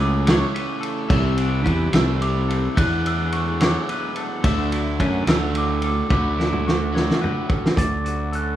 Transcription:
Already playing: fingered electric bass C#2, overdriven electric guitar C#3 E3 A3 E4 A4, clean electric guitar E4
0.00 clean electric guitar E3 B3 G#4, glockenspiel D6
0.26 overdriven electric guitar C#3 E3 A3 E4 A4, clean electric guitar C#5, glockenspiel C#6, snare, ride
0.54 clean electric guitar C#3 B4, ride
0.81 clean electric guitar A3 A4, ride
0.98 clean electric guitar B3
1.09 fingered electric bass C2, overdriven electric guitar C3 G3, clean electric guitar C3 E5, kick, crash
1.13 overdriven electric guitar C4 E4 G4
1.38 clean electric guitar D4, ride
1.64 fingered electric bass E2, clean electric guitar B4, kick, ride
1.69 clean electric guitar E3 C4
1.92 fingered electric bass C2, overdriven electric guitar G3 C4 E4 G4, clean electric guitar C5, glockenspiel E6, snare, ride
1.97 overdriven electric guitar C3, clean electric guitar A3
2.19 clean electric guitar C3 B4, glockenspiel D6, ride
2.49 clean electric guitar C4 A4, ride
2.75 fingered electric bass E2, clean electric guitar E2 B4, overdriven electric guitar E3 B3 D4 G#4, glockenspiel F#6, kick, ride
3.06 clean electric guitar D4, glockenspiel E6, ride
3.32 clean electric guitar E3 A3 F#4, ride
3.60 overdriven electric guitar E3 B3 D4 G#4, clean electric guitar F#3 C#5, snare, ride
3.64 glockenspiel D6
3.89 clean electric guitar B2 B4, ride
4.16 clean electric guitar A3 A4, ride
4.43 fingered electric bass D2, clean electric guitar D2 E5, overdriven electric guitar D3 A3 D4 F#4, kick, ride
4.72 clean electric guitar E4, ride
5.00 fingered electric bass F#2, clean electric guitar D3 B4, kick, ride
5.26 fingered electric bass D2, overdriven electric guitar D3 A3 D4 F#4, clean electric guitar F#3 C#5, glockenspiel E6, snare, ride
5.55 clean electric guitar A2 B4, glockenspiel D6, ride
5.82 clean electric guitar C#4 A4, glockenspiel D6, ride
6.10 fingered electric bass D2, clean electric guitar D2 B4, overdriven electric guitar D3 A3 D4 F#4, glockenspiel D6, kick, high tom
6.38 clean electric guitar E4, snare
6.53 mid tom
6.66 clean electric guitar D3 F#4, snare
6.92 overdriven electric guitar D3 A3 D4 F#4, clean electric guitar F#3 C#5, snare
7.11 snare
7.22 clean electric guitar A2 B4, mid tom
7.49 clean electric guitar C#4 A4, kick
7.66 snare
7.77 fingered electric bass D2, clean electric guitar D2 D5, glockenspiel A6, kick, closed hi-hat
8.05 clean electric guitar F#4, closed hi-hat
8.32 clean electric guitar D3 C#4 A4, glockenspiel F#6, closed hi-hat

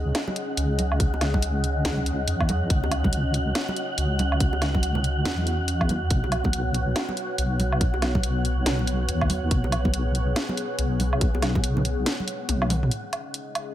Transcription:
Already playing: wobble bass C#2, analog synth pad C#4 G#4 D#5, synth texture F#5
0.15 snare, closed hi-hat, low woodblock
0.27 high bongo, high conga
0.36 closed hi-hat
0.57 wobble bass C#2, closed hi-hat
0.79 closed hi-hat, high conga
0.92 low woodblock
1.00 kick, closed hi-hat
1.14 high bongo
1.21 snare, closed hi-hat, low woodblock
1.34 kick, high bongo, high conga
1.42 closed hi-hat
1.64 closed hi-hat
1.85 wobble bass C#2, snare, closed hi-hat
1.98 high conga
2.06 closed hi-hat
2.28 wobble bass E2, closed hi-hat
2.40 kick, low woodblock
2.49 closed hi-hat, high conga
2.70 wobble bass C#2, analog synth pad F#4, kick, closed hi-hat
2.84 high bongo
2.92 closed hi-hat, low woodblock
3.04 kick, high bongo, high conga
3.13 closed hi-hat
3.34 closed hi-hat
3.55 snare, closed hi-hat, low woodblock
3.68 high bongo, high conga
3.76 closed hi-hat
3.98 wobble bass C#2, closed hi-hat
4.19 closed hi-hat, high conga
4.32 low woodblock
4.40 kick, closed hi-hat
4.53 high bongo
4.62 snare, closed hi-hat, low woodblock
4.74 kick, high bongo, high conga
4.83 closed hi-hat
4.95 low conga
5.04 closed hi-hat
5.25 wobble bass E2, snare, closed hi-hat
5.38 high conga
5.47 closed hi-hat
5.68 closed hi-hat
5.81 kick, low woodblock
5.89 closed hi-hat, high conga
6.11 wobble bass B1, analog synth pad B3 C#5, kick, closed hi-hat
6.24 high bongo
6.32 closed hi-hat, low woodblock
6.44 kick, high bongo, high conga
6.53 closed hi-hat
6.74 closed hi-hat
6.96 snare, closed hi-hat, low woodblock
7.09 high bongo, high conga
7.17 closed hi-hat
7.38 wobble bass B1, closed hi-hat
7.60 open hi-hat, high conga
7.72 low woodblock
7.81 kick, closed hi-hat
7.94 high bongo
8.02 snare, closed hi-hat, low woodblock
8.15 kick, high bongo, high conga
8.23 closed hi-hat
8.45 closed hi-hat
8.66 wobble bass B1, snare, closed hi-hat
8.79 high conga
8.87 closed hi-hat
9.09 wobble bass D#2, closed hi-hat
9.21 kick, low woodblock
9.29 open hi-hat, high conga
9.51 wobble bass B1, analog synth pad G#4, kick, closed hi-hat
9.64 high bongo
9.72 closed hi-hat, low woodblock
9.85 kick, high bongo, high conga
9.94 closed hi-hat
10.15 closed hi-hat
10.36 snare, closed hi-hat, low woodblock
10.49 high bongo, high conga
10.57 closed hi-hat
10.79 wobble bass B1, closed hi-hat
11.00 open hi-hat, high conga
11.13 low woodblock
11.21 kick, closed hi-hat
11.35 high bongo
11.42 snare, closed hi-hat, low woodblock
11.55 kick, high bongo, high conga
11.64 closed hi-hat
11.77 low conga
11.85 closed hi-hat
12.06 snare, closed hi-hat
12.20 high conga
12.28 closed hi-hat
12.49 wobble bass B1, closed hi-hat, high tom
12.62 high tom, low woodblock
12.70 open hi-hat, mid tom, high conga
12.83 mid tom
12.91 analog synth pad C#4 G#4 D#5, closed hi-hat
13.13 closed hi-hat, low woodblock
13.34 closed hi-hat
13.55 closed hi-hat, low woodblock

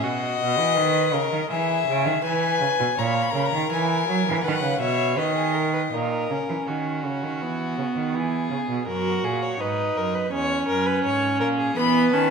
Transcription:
0.03 cello B2, violin F#4 D#5
0.40 cello B2
0.59 cello E3
0.76 cello D#3, violin B4
1.13 cello C#3, violin A#4
1.32 cello D#3
1.50 cello E3, violin G#4 E5
1.88 cello C#3
2.06 cello D#3
2.24 cello E3, violin B4 G#5
2.61 cello C#3
2.80 cello B2
2.97 cello A#2, violin C#5 A#5
3.07 violin B5
3.14 violin A#5
3.22 violin B5
3.30 violin A#4 A#5
3.34 cello C#3
3.39 violin B5
3.46 violin A#5
3.53 cello D#3
3.72 cello E3, violin G#5
4.08 cello F#3
4.26 cello E3
4.44 cello D#3, violin B4 F#5
4.63 cello C#3
4.80 cello B2, violin C#5 E5
5.17 cello D#3, violin B4 D#5
5.36 violin G#4
5.54 violin A#4
5.73 violin B4
5.91 cello A#2, viola D#4, violin A#4
6.30 cello C#3, viola C#4
6.49 cello E3
6.67 cello D#3, violin F#4
7.05 cello C#3
7.23 cello D#3
7.41 cello E3, viola B3
7.78 cello C#3
7.96 cello D#3
8.15 cello E3, violin G#4
8.51 cello C#3
8.69 cello B2
8.87 cello F#2, viola F#4, violin A#4
9.24 cello A#2, violin G#4
9.42 violin C#5
9.60 cello G#2, viola D#4, violin B4
9.96 cello F#2, violin A#4
10.15 violin B4
10.32 cello E2, viola C#4, violin C#5
10.68 cello F#2, violin A#4
10.86 violin B4
11.04 cello G#2, violin C#5
11.40 cello A#2, violin A#4
11.59 violin G#4
11.76 cello E3, viola B3, violin B4 B5
12.13 cello D#3, viola C#4, violin A5

